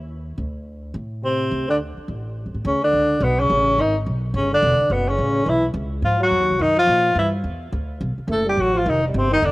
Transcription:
0.00 0.35 D#2 medium
0.38 0.91 D2 medium
0.94 1.48 A2 medium
1.23 1.65 C3 medium
1.23 1.66 C4 medium
1.51 1.93 D2 medium
1.69 1.79 D3 medium
1.69 1.76 D4 medium
1.97 muted upright bass stroke soft
2.08 2.43 A1 medium
2.46 2.54 F#2 soft
2.54 2.63 A2 medium
2.65 2.92 D2 medium
2.65 2.81 C#3 medium
2.65 2.82 C#4 medium
2.83 3.24 D3 medium
2.83 3.25 D4 medium
2.93 3.20 C#2 medium
3.20 3.48 B1 medium
3.20 3.41 B2 medium
3.20 3.41 B3 medium
3.39 3.81 C#3 medium
3.39 3.82 C#4 medium
3.50 3.77 A1 medium
3.78 4.05 G#1 medium
3.78 3.95 D#3 medium
3.78 3.96 D#4 medium
4.06 4.33 B1 medium
4.34 4.61 G1 medium
4.34 4.51 C#3 medium
4.34 4.51 C#4 medium
4.52 4.93 D3 medium
4.52 4.94 D4 loud
4.63 4.78 E1 medium
4.80 muted upright bass stroke soft
4.90 5.17 F#1 medium
4.90 5.10 B2 medium
4.90 5.10 B3 medium
5.09 5.49 C#3 medium
5.09 5.50 C#4 medium
5.18 5.46 A1 medium
5.46 5.73 B1 medium
5.46 5.64 E3 medium
5.46 5.65 E4 medium
5.74 6.02 C#2 medium
6.02 6.30 G#2 medium
6.02 6.19 F3 medium
6.02 6.20 F4 medium
6.20 6.61 F#3 medium
6.20 6.63 F#4 medium
6.31 6.40 F2 medium
6.40 6.50 D#2 medium
6.50 6.59 C2 medium
6.59 6.87 F#2 medium
6.59 6.76 D#3 medium
6.59 6.78 D#4 medium
6.77 7.13 F3 medium
6.77 7.14 F4 loud
6.87 7.15 A#2 medium
7.15 7.43 G2 medium
7.15 7.32 E3 medium
7.15 7.28 E4 medium
7.44 7.71 E2 medium
7.72 8.00 D2 medium
8.01 8.17 B1 medium
8.18 muted upright bass stroke soft
8.28 8.56 F#1 medium
8.28 8.45 A3 medium
8.32 8.46 A4 medium
8.46 8.61 G3 medium
8.46 8.62 G4 medium
8.57 8.84 A1 medium
8.57 8.77 F#3 medium
8.57 8.79 F#4 medium
8.75 8.88 F3 medium
8.75 8.91 F4 medium
8.86 9.13 F1 medium
8.86 9.02 D#3 medium
8.86 9.04 D#4 medium
9.03 9.16 G2 soft
9.07 9.19 G3 medium
9.14 9.41 G1 medium
9.14 9.31 C3 medium
9.14 9.33 C4 medium
9.31 9.44 D#3 medium
9.31 9.46 D#4 loud
9.42 9.52 E1 medium
9.42 9.52 D3 medium
9.42 9.52 D4 medium

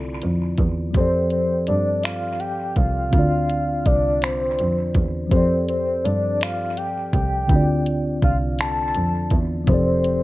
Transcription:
0.00 0.23 C2 medium
0.00 0.89 D3 soft
0.00 0.90 C4 soft
0.00 0.92 E4 soft
0.00 0.93 F4 soft
0.00 0.60 A4 medium
0.00 0.94 D5 medium
0.22 0.56 F2 medium
0.22 closed hi-hat soft
0.58 0.92 E2 medium
0.58 kick medium
0.58 closed hi-hat soft
0.91 3.07 F3 medium
0.91 3.08 C4 soft
0.91 kick medium
0.91 closed hi-hat medium
0.95 1.68 F2 medium
0.95 3.09 G4 soft
0.95 3.11 A4 soft
0.95 1.30 C5 medium
1.01 3.12 D5 medium
1.30 1.66 C5 medium
1.30 closed hi-hat soft
1.67 2.73 G2 medium
1.67 2.05 D5 medium
1.67 closed hi-hat soft
2.03 2.41 F5 medium
2.03 finger snap medium
2.03 closed hi-hat medium
2.40 2.78 G5 medium
2.40 closed hi-hat soft
2.76 3.10 C2 medium
2.76 3.87 F5 medium
2.76 kick medium
2.76 closed hi-hat soft
3.09 5.25 D3 soft
3.09 5.26 C4 soft
3.09 kick medium
3.09 closed hi-hat medium
3.14 3.82 D2 medium
3.14 5.28 D4 soft
3.14 5.29 F4 soft
3.19 5.30 D5 medium
3.50 closed hi-hat soft
3.86 4.59 C2 medium
3.86 4.24 D5 medium
3.86 kick medium
3.86 closed hi-hat soft
4.22 5.04 C5 medium
4.22 finger snap medium
4.22 closed hi-hat medium
4.59 4.92 F2 medium
4.59 closed hi-hat soft
4.94 5.28 E2 medium
4.94 kick medium
4.94 closed hi-hat medium
5.27 7.43 F3 soft
5.27 7.44 C4 soft
5.31 6.05 F2 medium
5.31 7.46 G4 soft
5.31 7.47 A4 soft
5.31 5.65 C5 medium
5.31 kick medium
5.31 closed hi-hat medium
5.37 7.48 D5 medium
5.69 6.06 C5 medium
5.69 closed hi-hat soft
6.04 7.10 G2 medium
6.04 6.43 D5 medium
6.04 closed hi-hat soft
6.41 6.79 F5 loud
6.41 finger snap medium
6.41 closed hi-hat medium
6.77 7.13 G5 medium
6.77 closed hi-hat soft
7.13 7.47 C2 medium
7.13 8.18 G5 loud
7.13 kick medium
7.13 closed hi-hat medium
7.46 9.62 D3 medium
7.46 9.63 C4 medium
7.46 kick medium
7.46 closed hi-hat medium
7.50 8.19 D2 medium
7.50 9.64 D4 soft
7.50 9.66 F4 soft
7.56 9.67 D5 medium
7.86 closed hi-hat soft
8.22 8.95 C2 medium
8.22 8.38 F5 medium
8.22 kick medium
8.22 closed hi-hat soft
8.59 9.37 A5 loud
8.59 finger snap medium
8.59 closed hi-hat medium
8.95 9.28 F2 medium
8.95 closed hi-hat soft
9.30 9.68 E2 medium
9.30 kick medium
9.30 closed hi-hat medium
9.64 10.23 F3 medium
9.64 10.23 C4 medium
9.64 kick medium
9.64 closed hi-hat medium
9.68 10.23 F1 medium
9.68 10.23 G4 medium
9.68 10.23 A4 soft
9.68 10.23 C5 loud
9.74 10.23 D5 medium
10.04 closed hi-hat soft

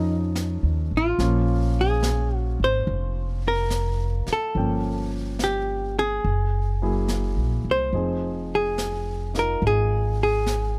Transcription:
0.00 0.59 F2 medium
0.00 1.17 F3 soft
0.00 1.18 C#4 soft
0.00 0.91 D#4 medium
0.00 1.20 D#4 soft
0.00 1.22 A4 soft
0.35 snare soft
0.35 hi-hat pedal soft
0.63 0.89 D#2 medium
0.91 1.17 A1 medium
0.97 1.81 F4 medium
1.18 2.55 A#1 medium
1.18 4.54 F3 soft
1.18 4.55 A#3 soft
1.18 4.55 C#4 soft
1.18 4.56 F4 medium
1.18 brush sweep soft
1.18 snare soft
1.81 2.37 G#4 medium
2.03 snare soft
2.03 hi-hat pedal soft
2.37 2.58 F#4 medium
2.60 2.85 G#1 medium
2.64 3.42 C5 medium
2.87 4.23 F1 medium
2.87 brush sweep soft
3.48 4.32 A#4 medium
3.70 snare soft
3.70 hi-hat pedal soft
4.27 muted upright bass stroke soft
4.27 snare soft
4.33 5.10 A4 medium
4.55 6.19 G1 medium
4.55 6.23 F3 soft
4.55 6.24 A#3 soft
4.55 6.24 C#4 soft
4.55 6.25 G5 soft
4.55 brush sweep soft
5.39 snare soft
5.39 hi-hat pedal soft
5.44 5.99 G4 medium
5.99 7.06 G#4 medium
6.24 7.33 F#1 medium
6.24 brush sweep soft
6.82 7.93 F#3 soft
6.82 7.94 A#3 soft
6.82 7.94 E4 soft
6.82 7.93 G#4 soft
7.08 snare soft
7.08 hi-hat pedal soft
7.36 7.63 A#1 soft
7.64 7.91 C2 medium
7.71 8.55 C5 medium
7.93 9.57 F1 medium
7.93 10.79 F3 soft
7.93 10.79 C4 soft
7.93 9.32 D#4 soft
7.93 10.79 G#4 soft
7.93 brush sweep soft
8.55 9.33 G#4 medium
8.78 snare soft
8.78 hi-hat pedal soft
9.34 10.79 D#4 soft
9.34 10.79 F4 soft
9.34 10.79 A#4 soft
9.34 snare soft
9.39 9.65 A#4 medium
9.62 10.79 G#1 medium
9.62 brush sweep soft
9.67 10.22 G#4 medium
10.23 10.79 G#4 medium
10.46 snare soft
10.46 hi-hat pedal soft

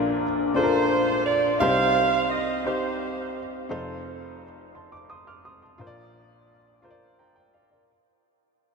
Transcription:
0.00 1.56 A#1 medium
0.00 1.56 A#2 medium
0.00 0.23 D4 medium
0.00 0.24 F4 medium
0.00 0.24 A#4 loud
0.54 1.28 D4 medium
0.54 1.28 F4 medium
0.54 1.57 F4 medium
0.54 0.62 A4 medium
0.54 1.21 C5 medium
0.63 1.32 A#4 medium
1.26 1.58 D5 loud
1.60 3.66 C2 medium
1.60 3.66 C3 medium
1.60 2.33 D#4 medium
1.60 2.33 G4 medium
1.60 2.61 C5 medium
1.60 2.34 C5 medium
1.60 2.30 F5 loud
2.30 2.65 D#5 loud
2.65 3.38 D#4 medium
2.65 3.67 D#4 medium
2.65 3.38 G4 medium
2.65 3.67 G4 medium
2.65 3.44 C5 medium
2.65 3.39 C5 medium
3.69 5.76 F1 medium
3.69 5.76 F2 medium
3.69 4.42 D#4 loud
3.69 4.43 F4 medium
3.69 4.43 A4 medium
3.69 4.43 C5 medium
3.69 4.43 F5 loud
4.75 4.92 A5 medium
4.75 4.91 C6 medium
4.92 5.09 D6 medium
5.10 5.27 C6 medium
5.10 5.26 D#6 medium
5.27 5.44 D6 medium
5.27 5.44 F6 medium
5.45 5.61 C6 medium
5.45 5.62 D#6 medium
5.62 5.96 A5 medium
5.62 5.95 C6 medium
5.78 7.85 A#1 medium
5.78 7.86 A#2 medium
5.78 6.52 F4 loud
5.78 6.52 A#4 medium
5.78 5.87 C5 medium
5.87 6.56 D5 loud
6.82 7.56 F4 medium
6.82 7.19 A#4 medium
6.82 6.91 C5 medium
6.91 7.22 D5 loud
7.19 7.34 G5 medium
7.19 7.36 A#5 medium
7.36 7.53 G5 medium
7.54 7.69 D5 medium
7.54 7.71 F5 medium
7.71 8.05 A#4 medium
7.71 8.05 D5 medium

